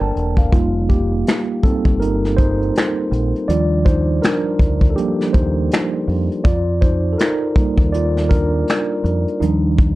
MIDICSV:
0, 0, Header, 1, 5, 480
1, 0, Start_track
1, 0, Tempo, 740741
1, 340, Time_signature, 4, 2, 24, 8
1, 6450, End_track
2, 0, Start_track
2, 0, Title_t, "Tine electric piano"
2, 0, Program_c, 0, 4
2, 0, Control_c, 0, 64, 127
2, 0, Note_on_c, 0, 58, 73
2, 0, Note_on_c, 0, 62, 78
2, 0, Note_on_c, 0, 69, 66
2, 0, Note_on_c, 0, 70, 95
2, 0, Note_on_c, 0, 72, 66
2, 0, Note_on_c, 0, 74, 78
2, 0, Note_on_c, 0, 79, 53
2, 11, Note_on_c, 0, 81, 64
2, 236, Note_off_c, 0, 81, 0
2, 247, Note_on_c, 0, 77, 64
2, 309, Note_off_c, 0, 58, 0
2, 319, Note_off_c, 0, 69, 0
2, 320, Note_off_c, 0, 62, 0
2, 329, Note_off_c, 0, 72, 0
2, 339, Note_off_c, 0, 74, 0
2, 339, Note_on_c, 0, 65, 76
2, 342, Note_on_c, 0, 55, 49
2, 345, Note_on_c, 0, 58, 62
2, 347, Control_c, 0, 64, 0
2, 350, Note_off_c, 0, 79, 0
2, 350, Note_on_c, 0, 63, 55
2, 361, Note_off_c, 0, 70, 0
2, 469, Control_c, 0, 64, 127
2, 474, Note_off_c, 0, 77, 0
2, 568, Note_off_c, 0, 58, 0
2, 578, Note_on_c, 0, 67, 83
2, 586, Note_off_c, 0, 65, 0
2, 589, Note_on_c, 0, 58, 65
2, 679, Note_off_c, 0, 55, 0
2, 683, Note_off_c, 0, 63, 0
2, 1038, Note_off_c, 0, 58, 0
2, 1059, Note_on_c, 0, 69, 100
2, 1062, Note_on_c, 0, 55, 48
2, 1066, Note_on_c, 0, 58, 49
2, 1068, Note_on_c, 0, 63, 59
2, 1070, Note_on_c, 0, 60, 79
2, 1073, Note_off_c, 0, 67, 0
2, 1277, Note_off_c, 0, 55, 0
2, 1279, Note_off_c, 0, 58, 0
2, 1280, Note_off_c, 0, 63, 0
2, 1288, Note_off_c, 0, 60, 0
2, 1295, Note_on_c, 0, 70, 98
2, 1306, Note_off_c, 0, 69, 0
2, 1307, Note_on_c, 0, 63, 79
2, 1527, Note_off_c, 0, 63, 0
2, 1533, Note_on_c, 0, 72, 107
2, 1544, Note_off_c, 0, 70, 0
2, 1546, Note_on_c, 0, 63, 79
2, 2237, Note_off_c, 0, 63, 0
2, 2255, Note_on_c, 0, 74, 97
2, 2258, Note_on_c, 0, 53, 48
2, 2262, Note_on_c, 0, 55, 48
2, 2267, Note_on_c, 0, 62, 53
2, 2267, Note_on_c, 0, 65, 74
2, 2269, Control_c, 0, 64, 0
2, 2278, Note_off_c, 0, 72, 0
2, 2396, Control_c, 0, 64, 127
2, 2487, Note_off_c, 0, 65, 0
2, 2495, Note_on_c, 0, 72, 96
2, 2504, Note_off_c, 0, 74, 0
2, 2509, Note_on_c, 0, 63, 75
2, 2728, Note_off_c, 0, 63, 0
2, 2735, Note_on_c, 0, 70, 97
2, 2741, Note_off_c, 0, 62, 0
2, 2745, Note_off_c, 0, 72, 0
2, 2749, Note_on_c, 0, 62, 75
2, 3162, Note_off_c, 0, 62, 0
2, 3177, Note_on_c, 0, 69, 67
2, 3195, Note_off_c, 0, 70, 0
2, 3213, Note_off_c, 0, 53, 0
2, 3214, Note_on_c, 0, 67, 102
2, 3215, Note_off_c, 0, 55, 0
2, 3216, Note_off_c, 0, 69, 0
2, 3221, Note_on_c, 0, 53, 47
2, 3223, Note_on_c, 0, 55, 42
2, 3226, Note_on_c, 0, 62, 51
2, 3228, Note_on_c, 0, 58, 74
2, 3436, Note_off_c, 0, 53, 0
2, 3437, Note_off_c, 0, 55, 0
2, 3439, Note_off_c, 0, 62, 0
2, 3447, Note_off_c, 0, 58, 0
2, 3454, Note_on_c, 0, 72, 94
2, 3464, Note_off_c, 0, 67, 0
2, 3468, Note_on_c, 0, 63, 75
2, 4158, Note_off_c, 0, 63, 0
2, 4173, Note_on_c, 0, 74, 92
2, 4187, Control_c, 0, 64, 0
2, 4188, Note_on_c, 0, 65, 79
2, 4198, Note_off_c, 0, 72, 0
2, 4291, Control_c, 0, 64, 127
2, 4407, Note_off_c, 0, 65, 0
2, 4415, Note_on_c, 0, 72, 92
2, 4424, Note_off_c, 0, 74, 0
2, 4429, Note_on_c, 0, 63, 63
2, 4508, Note_off_c, 0, 72, 0
2, 4519, Note_off_c, 0, 63, 0
2, 4618, Note_on_c, 0, 69, 63
2, 4654, Note_on_c, 0, 70, 93
2, 4657, Note_off_c, 0, 69, 0
2, 4670, Note_on_c, 0, 63, 74
2, 4901, Note_off_c, 0, 63, 0
2, 4902, Note_on_c, 0, 55, 54
2, 4906, Note_on_c, 0, 58, 54
2, 4909, Note_on_c, 0, 63, 66
2, 5135, Note_on_c, 0, 74, 99
2, 5149, Note_on_c, 0, 65, 75
2, 5151, Note_off_c, 0, 70, 0
2, 5239, Note_off_c, 0, 55, 0
2, 5241, Note_off_c, 0, 58, 0
2, 5242, Note_off_c, 0, 63, 0
2, 5368, Note_off_c, 0, 65, 0
2, 5373, Note_on_c, 0, 70, 97
2, 5384, Note_off_c, 0, 74, 0
2, 5388, Note_on_c, 0, 62, 75
2, 6078, Note_off_c, 0, 62, 0
2, 6094, Note_on_c, 0, 63, 79
2, 6099, Note_on_c, 0, 53, 50
2, 6104, Note_on_c, 0, 55, 58
2, 6107, Control_c, 0, 64, 0
2, 6108, Note_on_c, 0, 62, 59
2, 6118, Note_off_c, 0, 70, 0
2, 6204, Control_c, 0, 64, 127
2, 6437, Note_off_c, 0, 53, 0
2, 6442, Note_off_c, 0, 62, 0
2, 6450, Note_off_c, 0, 55, 0
2, 6450, Note_off_c, 0, 63, 0
2, 6450, End_track
3, 0, Start_track
3, 0, Title_t, "Analog synth pad"
3, 0, Program_c, 1, 89
3, 0, Note_on_c, 1, 50, 80
3, 0, Note_on_c, 1, 58, 71
3, 0, Note_on_c, 1, 60, 76
3, 0, Note_on_c, 1, 81, 87
3, 318, Note_off_c, 1, 50, 0
3, 318, Note_off_c, 1, 60, 0
3, 330, Note_off_c, 1, 58, 0
3, 330, Note_off_c, 1, 81, 0
3, 6450, End_track
4, 0, Start_track
4, 0, Title_t, "Fingered electric bass"
4, 0, Program_c, 2, 33
4, 6, Note_on_c, 2, 31, 95
4, 93, Note_off_c, 2, 31, 0
4, 101, Note_on_c, 2, 28, 89
4, 320, Note_off_c, 2, 28, 0
4, 341, Note_on_c, 2, 29, 98
4, 794, Note_off_c, 2, 29, 0
4, 1201, Note_on_c, 2, 31, 87
4, 1752, Note_off_c, 2, 31, 0
4, 2019, Note_on_c, 2, 34, 96
4, 2152, Note_off_c, 2, 34, 0
4, 2259, Note_on_c, 2, 39, 95
4, 2713, Note_off_c, 2, 39, 0
4, 2979, Note_on_c, 2, 38, 86
4, 3199, Note_off_c, 2, 38, 0
4, 3464, Note_on_c, 2, 39, 82
4, 3682, Note_off_c, 2, 39, 0
4, 3939, Note_on_c, 2, 41, 98
4, 4072, Note_off_c, 2, 41, 0
4, 4180, Note_on_c, 2, 41, 104
4, 4634, Note_off_c, 2, 41, 0
4, 5040, Note_on_c, 2, 39, 79
4, 5592, Note_off_c, 2, 39, 0
4, 5859, Note_on_c, 2, 41, 105
4, 5992, Note_off_c, 2, 41, 0
4, 6099, Note_on_c, 2, 39, 103
4, 6450, Note_off_c, 2, 39, 0
4, 6450, End_track
5, 0, Start_track
5, 0, Title_t, "Drums"
5, 108, Note_on_c, 9, 42, 55
5, 173, Note_off_c, 9, 42, 0
5, 239, Note_on_c, 9, 36, 82
5, 254, Note_on_c, 9, 42, 34
5, 304, Note_off_c, 9, 36, 0
5, 319, Note_off_c, 9, 42, 0
5, 340, Note_on_c, 9, 36, 114
5, 347, Note_on_c, 9, 42, 77
5, 405, Note_off_c, 9, 36, 0
5, 411, Note_off_c, 9, 42, 0
5, 581, Note_on_c, 9, 36, 87
5, 588, Note_on_c, 9, 42, 65
5, 646, Note_off_c, 9, 36, 0
5, 653, Note_off_c, 9, 42, 0
5, 823, Note_on_c, 9, 42, 88
5, 832, Note_on_c, 9, 38, 123
5, 837, Note_on_c, 9, 26, 97
5, 888, Note_off_c, 9, 42, 0
5, 897, Note_off_c, 9, 38, 0
5, 902, Note_off_c, 9, 26, 0
5, 1059, Note_on_c, 9, 36, 85
5, 1070, Note_on_c, 9, 42, 67
5, 1124, Note_off_c, 9, 36, 0
5, 1135, Note_off_c, 9, 42, 0
5, 1200, Note_on_c, 9, 36, 94
5, 1265, Note_off_c, 9, 36, 0
5, 1309, Note_on_c, 9, 42, 84
5, 1374, Note_off_c, 9, 42, 0
5, 1458, Note_on_c, 9, 38, 32
5, 1523, Note_off_c, 9, 38, 0
5, 1545, Note_on_c, 9, 36, 83
5, 1548, Note_on_c, 9, 42, 72
5, 1610, Note_off_c, 9, 36, 0
5, 1613, Note_off_c, 9, 42, 0
5, 1700, Note_on_c, 9, 42, 31
5, 1765, Note_off_c, 9, 42, 0
5, 1786, Note_on_c, 9, 42, 81
5, 1798, Note_on_c, 9, 38, 114
5, 1804, Note_on_c, 9, 26, 85
5, 1851, Note_off_c, 9, 42, 0
5, 1863, Note_off_c, 9, 38, 0
5, 1869, Note_off_c, 9, 26, 0
5, 2028, Note_on_c, 9, 42, 50
5, 2093, Note_off_c, 9, 42, 0
5, 2175, Note_on_c, 9, 42, 33
5, 2240, Note_off_c, 9, 42, 0
5, 2266, Note_on_c, 9, 42, 80
5, 2331, Note_off_c, 9, 42, 0
5, 2500, Note_on_c, 9, 36, 85
5, 2507, Note_on_c, 9, 42, 72
5, 2565, Note_off_c, 9, 36, 0
5, 2572, Note_off_c, 9, 42, 0
5, 2742, Note_on_c, 9, 42, 84
5, 2750, Note_on_c, 9, 38, 121
5, 2756, Note_on_c, 9, 26, 97
5, 2807, Note_off_c, 9, 42, 0
5, 2815, Note_off_c, 9, 38, 0
5, 2821, Note_off_c, 9, 26, 0
5, 2977, Note_on_c, 9, 36, 94
5, 2989, Note_on_c, 9, 42, 69
5, 3042, Note_off_c, 9, 36, 0
5, 3053, Note_off_c, 9, 42, 0
5, 3118, Note_on_c, 9, 36, 86
5, 3141, Note_on_c, 9, 42, 36
5, 3183, Note_off_c, 9, 36, 0
5, 3205, Note_off_c, 9, 42, 0
5, 3225, Note_on_c, 9, 42, 81
5, 3290, Note_off_c, 9, 42, 0
5, 3374, Note_on_c, 9, 38, 32
5, 3439, Note_off_c, 9, 38, 0
5, 3463, Note_on_c, 9, 36, 94
5, 3464, Note_on_c, 9, 42, 72
5, 3528, Note_off_c, 9, 36, 0
5, 3529, Note_off_c, 9, 42, 0
5, 3703, Note_on_c, 9, 42, 82
5, 3716, Note_on_c, 9, 38, 117
5, 3721, Note_on_c, 9, 26, 91
5, 3768, Note_off_c, 9, 42, 0
5, 3780, Note_off_c, 9, 38, 0
5, 3786, Note_off_c, 9, 26, 0
5, 3947, Note_on_c, 9, 46, 38
5, 4012, Note_off_c, 9, 46, 0
5, 4094, Note_on_c, 9, 42, 33
5, 4159, Note_off_c, 9, 42, 0
5, 4179, Note_on_c, 9, 36, 119
5, 4184, Note_on_c, 9, 42, 71
5, 4244, Note_off_c, 9, 36, 0
5, 4249, Note_off_c, 9, 42, 0
5, 4420, Note_on_c, 9, 36, 91
5, 4427, Note_on_c, 9, 42, 65
5, 4485, Note_off_c, 9, 36, 0
5, 4492, Note_off_c, 9, 42, 0
5, 4661, Note_on_c, 9, 42, 92
5, 4670, Note_on_c, 9, 38, 122
5, 4675, Note_on_c, 9, 26, 98
5, 4726, Note_off_c, 9, 42, 0
5, 4734, Note_off_c, 9, 38, 0
5, 4740, Note_off_c, 9, 26, 0
5, 4897, Note_on_c, 9, 36, 95
5, 4909, Note_on_c, 9, 42, 69
5, 4962, Note_off_c, 9, 36, 0
5, 4974, Note_off_c, 9, 42, 0
5, 5038, Note_on_c, 9, 36, 89
5, 5061, Note_on_c, 9, 42, 34
5, 5103, Note_off_c, 9, 36, 0
5, 5126, Note_off_c, 9, 42, 0
5, 5145, Note_on_c, 9, 42, 83
5, 5210, Note_off_c, 9, 42, 0
5, 5294, Note_on_c, 9, 38, 33
5, 5359, Note_off_c, 9, 38, 0
5, 5383, Note_on_c, 9, 36, 90
5, 5385, Note_on_c, 9, 42, 78
5, 5448, Note_off_c, 9, 36, 0
5, 5450, Note_off_c, 9, 42, 0
5, 5623, Note_on_c, 9, 42, 78
5, 5635, Note_on_c, 9, 38, 109
5, 5641, Note_on_c, 9, 26, 86
5, 5687, Note_off_c, 9, 42, 0
5, 5700, Note_off_c, 9, 38, 0
5, 5706, Note_off_c, 9, 26, 0
5, 5868, Note_on_c, 9, 42, 51
5, 5932, Note_off_c, 9, 42, 0
5, 6013, Note_on_c, 9, 42, 33
5, 6078, Note_off_c, 9, 42, 0
5, 6106, Note_on_c, 9, 42, 75
5, 6170, Note_off_c, 9, 42, 0
5, 6340, Note_on_c, 9, 36, 98
5, 6347, Note_on_c, 9, 42, 69
5, 6405, Note_off_c, 9, 36, 0
5, 6412, Note_off_c, 9, 42, 0
5, 6450, End_track
0, 0, End_of_file